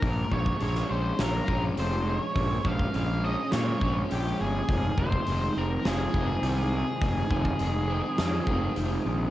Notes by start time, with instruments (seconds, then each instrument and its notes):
Already playing: clean electric guitar F4, lead electric guitar A#4
0.03 fingered electric bass A#1, clean electric guitar A#2 G#3, overdriven electric guitar A#2, kick, open hi-hat
0.32 fingered electric bass A#1, clean electric guitar F3 G#3, overdriven electric guitar F3, lead electric guitar C#5, kick
0.46 kick
0.60 fingered electric bass A#1, clean electric guitar G#3, overdriven electric guitar G#3, lead electric guitar C#5, open hi-hat
0.75 snare
0.90 fingered electric bass A#1, clean electric guitar F3 C#4, overdriven electric guitar C#4, lead electric guitar C5
1.19 fingered electric bass A#1, clean electric guitar A#2 F4, overdriven electric guitar G#3, lead electric guitar A#4, snare, open hi-hat
1.48 fingered electric bass A#1, clean electric guitar F3 G#3, overdriven electric guitar C#4, kick
1.77 fingered electric bass F1, overdriven electric guitar F3, clean electric guitar G#3 C#4, lead electric guitar C5, open hi-hat
2.07 overdriven electric guitar A#2, clean electric guitar G#3 C#4, lead electric guitar C5
2.20 lead electric guitar C#5
2.35 fingered electric bass A#1, overdriven electric guitar A#2, clean electric guitar A#2 G#3, kick, open hi-hat
2.65 fingered electric bass A#1, clean electric guitar F3 G#3, overdriven electric guitar F3, lead electric guitar F5, kick
2.79 kick
2.94 fingered electric bass A#1, clean electric guitar G#3, overdriven electric guitar G#3, lead electric guitar F5, open hi-hat
3.22 clean electric guitar F3 C#4, overdriven electric guitar C#4, lead electric guitar D#5
3.52 clean electric guitar A#2 F4, fingered electric bass A#2, overdriven electric guitar G#3, lead electric guitar C#5, snare, open hi-hat
3.81 fingered electric bass A#1, clean electric guitar F3 G#3, overdriven electric guitar C#4, kick
4.10 fingered electric bass A#1, overdriven electric guitar F3, clean electric guitar G#3 C#4, lead electric guitar G4, open hi-hat
4.39 fingered electric bass G1, overdriven electric guitar A#2, clean electric guitar G#3 C#4, lead electric guitar G#4
4.68 fingered electric bass F1, clean electric guitar F2 D#3, overdriven electric guitar F2, kick, open hi-hat
4.97 fingered electric bass F1, clean electric guitar D#3, overdriven electric guitar D#3, lead electric guitar C5, kick
5.12 kick
5.26 fingered electric bass F1, clean electric guitar G#3, overdriven electric guitar G#3, open hi-hat
5.55 fingered electric bass F1, clean electric guitar D#3 C4, overdriven electric guitar C4, lead electric guitar A#4
5.85 fingered electric bass F1, clean electric guitar C3 F4, overdriven electric guitar G#3, lead electric guitar G#4, snare, open hi-hat
6.14 fingered electric bass F1, clean electric guitar D#3 G#3, overdriven electric guitar C4, kick
6.42 fingered electric bass C2, overdriven electric guitar D#3, clean electric guitar D#3 C4, open hi-hat
6.73 overdriven electric guitar C3, clean electric guitar G#3 C4
7.01 fingered electric bass F1, overdriven electric guitar F2, clean electric guitar F2 D#3, kick, open hi-hat
7.30 fingered electric bass F1, overdriven electric guitar D#3, clean electric guitar D#3, kick
7.45 kick
7.59 fingered electric bass F1, overdriven electric guitar G#3, clean electric guitar G#3, open hi-hat
7.89 clean electric guitar D#3 C4, overdriven electric guitar C4
8.18 fingered electric bass F2, clean electric guitar C3 F4, overdriven electric guitar G#3, snare, open hi-hat
8.47 fingered electric bass F1, clean electric guitar D#3 G#3, overdriven electric guitar C4, kick
8.76 fingered electric bass F1, clean electric guitar D#3 C4, overdriven electric guitar D#3, open hi-hat
9.05 fingered electric bass A#1, overdriven electric guitar C3, clean electric guitar G#3 C4